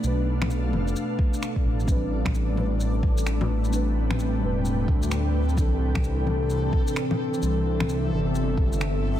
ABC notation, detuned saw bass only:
X:1
M:4/4
L:1/8
Q:"Swing 16ths" 1/4=130
K:Am
V:1 name="Detuned saw bass" clef=bass
B,,,3 F,,, z3 A,,, | A,,,4- A,,, A,,,2 A,,,- | A,,,2 A,,, E,,,2 D,,3 | C,,4- C,, z3 |
C,,3 G,,, G,,,4 |]